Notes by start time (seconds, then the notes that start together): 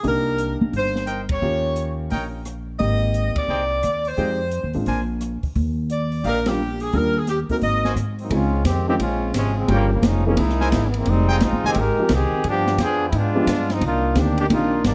0.03 C2 A#3 D4 D#4 G4, open hi-hat
0.07 A#4
0.38 closed hi-hat
0.61 B1
0.73 G1 C5, open hi-hat
0.96 snare
1.07 D#4 A#4 C5 G5, cross-stick, closed hi-hat
1.29 C#5, kick, ride
1.42 D#2 A#3 C#4 F4 G4
1.76 closed hi-hat
2.10 A#1 D#4 A#4 C#5 G5, open hi-hat
2.45 cross-stick, closed hi-hat
2.79 G#1 A#3 C4 D#4 G4 D#5, open hi-hat
3.14 closed hi-hat
3.36 D5, muted upright bass stroke, kick, ride
3.48 C2 D#4 G#4 C5 G5
3.83 D#2, cross-stick, closed hi-hat
4.05 C5, open hi-hat
4.17 F2 G#3 C4 D#4 F4 G4 G#4 D#5 G5, open hi-hat
4.51 closed hi-hat
4.64 D#2
4.73 A1 G#3 C4 D4 F4, open hi-hat
4.86 A#1 D4 A#4 C5 G#5, open hi-hat
5.21 cross-stick, closed hi-hat
5.43 muted upright bass stroke, kick, open hi-hat
5.55 D#2, open hi-hat
5.90 D5, closed hi-hat
6.12 open hi-hat
6.24 A#1 D#4 G4 A#4 D5 F5, open hi-hat
6.46 G3 A#3 D4 F4 G4, snare, ride
6.80 G#4, open hi-hat
6.92 D#2 G3 A#3 D4 F4 A#4, open hi-hat
7.18 G#4
7.27 G4, snare, closed hi-hat
7.49 A#3 C4 D#4 F#4 A#4, muted upright bass stroke, kick, open hi-hat
7.61 G#1 D#5, open hi-hat
7.85 F#4 A#4 C5 G#5, snare
7.96 G#2, cross-stick, closed hi-hat
8.19 F#3 A#3 C4 D#4, open hi-hat
8.30 C#2 G#3 C4 C#4 D#4 F4, ride
8.64 F2 D#3 G#3 C4 G4, snare, hi-hat pedal, ride
8.88 D#3 G#3 C4 C#4 D#4 F4 G4
8.99 A#1 G#3 C4 C#4 F4, ride
9.34 G#1 C3 F3 G#3 C#4, snare, hi-hat pedal, ride
9.57 C#3 F3 G#3 C4
9.68 G1 C#3 F3 G3 A#3 C#4 F4 G4 A#4 C#5 G5, ride
9.94 C#3 F3 G3 A#3
10.02 F1 F3 G#3 C#4 D#4, snare, hi-hat pedal, ride
10.26 E3 F3 G3 A#3 C4 C#4 D#4 G#4
10.37 C2 G#3 A#3 D#4 E4, ride
10.49 snare
10.60 E4 A#4 C5 G#5, snare
10.72 G#1, snare, hi-hat pedal, ride
10.89 B3
10.94 ride
10.98 E3 G#3 A#3 C4
11.06 F1, ride
11.10 G3 G#3 C4 D#4
11.29 F4 G#4 D#5 G5
11.41 A#1 G#3 C4 D#4 F4, snare, hi-hat pedal, ride
11.52 G#1
11.64 F1 D#3 G#3 C4 F4 G4 G#4 D#5 G#5
11.74 G#1 A#4, ride
11.79 G#3 D#4 G4
11.97 F3 G#3 C4 D#4 G4, muted upright bass stroke
12.09 C2, snare, hi-hat pedal, ride
12.13 D#3 C4 G4 G#4
12.32 muted upright bass stroke
12.44 G2, ride
12.48 F3 B3 D4 G4
12.67 snare
12.78 F2 F4 G#4 B4 G5, snare, hi-hat pedal, ride
12.83 F3 B3 D4 G#4
13.09 G#2 E4, ride
13.16 G#3 B3 D4 F4
13.35 F3 G#3 B3 D4 G4
13.47 G2, snare, hi-hat pedal, ride
13.70 F3 G#3 C4 D#4, snare, ride
13.81 C2 D#4, ride
13.85 A#3 D4 F4
14.15 D2 D#3 A#3 C4 D4 G4, snare, hi-hat pedal, ride
14.19 D4 G4
14.38 D#3 A#3 D4 G4, ride
14.50 A#1 D#3 A#3 C4 D4 D#4 F4 G4, ride
14.84 G1 D#3 G3 A#3 D4, snare, hi-hat pedal, ride